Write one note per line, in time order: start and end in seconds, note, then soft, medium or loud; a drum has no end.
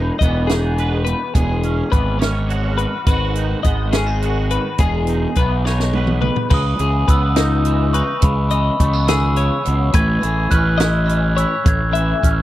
0.00 1.33 E2 medium
0.00 0.50 D#4 medium
0.00 0.78 G#4 medium
0.00 0.19 B4 medium
0.19 1.13 E1 medium
0.19 1.90 E3 medium
0.19 0.49 D#5 medium
0.19 kick medium
0.19 closed hi-hat soft
0.23 1.67 B3 medium
0.47 1.33 D#4 medium
0.47 1.04 G#4 medium
0.47 snare medium
0.47 closed hi-hat medium
0.78 1.36 B2 medium
0.78 1.34 B4 medium
0.78 closed hi-hat soft
1.05 1.34 B4 medium
1.05 closed hi-hat medium
1.34 1.82 E1 medium
1.34 2.47 E2 medium
1.34 1.92 G#4 medium
1.34 2.49 G#4 medium
1.34 kick medium
1.34 closed hi-hat medium
1.63 2.19 C#4 medium
1.63 closed hi-hat medium
1.91 2.85 G#1 medium
1.91 3.07 E3 medium
1.91 3.64 B3 soft
1.91 2.19 B4 medium
1.91 kick medium
1.91 closed hi-hat soft
2.19 3.07 C#4 medium
2.19 2.77 C#5 medium
2.19 snare medium
2.19 closed hi-hat medium
2.48 3.06 E2 medium
2.48 3.06 F#4 medium
2.48 closed hi-hat medium
2.78 3.06 B4 medium
2.78 closed hi-hat medium
3.06 3.53 G#1 medium
3.06 4.76 G#2 medium
3.06 4.21 F#4 medium
3.06 3.63 B4 medium
3.06 kick medium
3.06 closed hi-hat medium
3.35 3.92 D#4 medium
3.35 closed hi-hat medium
3.63 4.57 G#1 medium
3.63 5.38 G#3 medium
3.63 5.39 B3 medium
3.63 3.93 D#5 medium
3.63 kick medium
3.63 closed hi-hat medium
3.93 4.07 C#4 medium
3.93 4.50 G#4 medium
3.93 snare medium
3.93 closed hi-hat medium
4.07 4.79 D#4 soft
4.22 4.76 D#3 medium
4.22 4.79 F#4 soft
4.22 closed hi-hat medium
4.50 4.80 B4 medium
4.50 closed hi-hat medium
4.78 5.25 E1 medium
4.78 6.51 E2 medium
4.78 5.94 G#4 medium
4.78 5.37 G#4 medium
4.78 kick loud
4.78 closed hi-hat medium
5.07 5.65 D#4 medium
5.07 closed hi-hat medium
5.35 6.29 B1 medium
5.35 6.78 E3 medium
5.35 6.49 B3 soft
5.35 5.65 B4 medium
5.35 kick medium
5.35 closed hi-hat soft
5.65 6.49 D#4 medium
5.65 6.21 C#5 medium
5.65 snare soft
5.80 snare soft
5.93 6.49 B2 medium
5.93 6.49 B4 medium
5.93 high tom medium
6.07 mid tom medium
6.22 6.49 B4 medium
6.22 mid tom medium
6.36 floor tom medium
6.50 6.74 C#2 medium
6.50 6.79 C#3 medium
6.50 6.80 B4 medium
6.50 kick loud
6.50 crash loud
6.54 7.12 D#6 medium
6.79 7.03 C#2 medium
6.79 7.66 E3 medium
6.79 7.09 G#4 medium
6.79 closed hi-hat medium
7.08 8.01 C#2 loud
7.08 8.24 B3 medium
7.08 7.37 B4 medium
7.08 7.98 E6 medium
7.08 kick medium
7.08 closed hi-hat medium
7.36 7.94 D#4 medium
7.36 7.92 D#4 medium
7.36 snare medium
7.36 closed hi-hat medium
7.65 8.49 E3 medium
7.65 closed hi-hat medium
7.93 8.19 D#4 medium
7.93 8.51 B4 medium
7.93 8.23 C#6 medium
7.93 closed hi-hat medium
8.21 8.69 C#2 loud
8.21 8.51 C#3 medium
8.21 8.52 B5 medium
8.21 kick loud
8.21 closed hi-hat medium
8.50 10.21 E3 medium
8.50 9.09 D#5 medium
8.50 8.82 B5 medium
8.50 closed hi-hat medium
8.80 9.49 C#2 loud
8.80 8.93 A3 medium
8.80 9.10 C#6 medium
8.80 kick medium
8.80 closed hi-hat medium
8.93 9.94 B3 soft
9.07 9.36 D#3 medium
9.07 9.38 G#4 medium
9.07 9.69 E6 medium
9.07 snare loud
9.07 closed hi-hat medium
9.36 9.64 C#3 medium
9.36 9.95 C#5 medium
9.36 closed hi-hat medium
9.64 9.90 C#2 medium
9.64 9.94 B2 medium
9.64 closed hi-hat medium
9.93 10.17 A1 loud
9.93 11.63 A2 medium
9.93 10.23 B4 medium
9.93 10.54 G#6 loud
9.93 kick loud
9.93 closed hi-hat medium
10.21 10.46 A1 medium
10.21 11.04 E3 medium
10.21 10.51 G#4 medium
10.21 closed hi-hat medium
10.51 11.44 A1 loud
10.51 12.22 C#4 medium
10.51 10.80 B4 medium
10.51 11.40 F#6 medium
10.51 kick medium
10.51 closed hi-hat medium
10.78 11.34 E4 medium
10.78 11.36 D#5 medium
10.78 snare medium
10.78 closed hi-hat medium
11.05 11.91 E3 medium
11.05 closed hi-hat medium
11.36 11.62 E4 medium
11.36 11.93 C#5 medium
11.36 11.64 E6 medium
11.36 closed hi-hat medium
11.64 12.12 A1 loud
11.64 12.42 A2 medium
11.64 kick loud
11.64 closed hi-hat medium
11.68 12.42 G#6 medium
11.92 12.42 E3 medium
11.92 12.42 E5 medium
11.92 closed hi-hat medium
12.22 12.42 A1 medium
12.22 12.42 C#4 medium
12.22 kick medium
12.22 closed hi-hat medium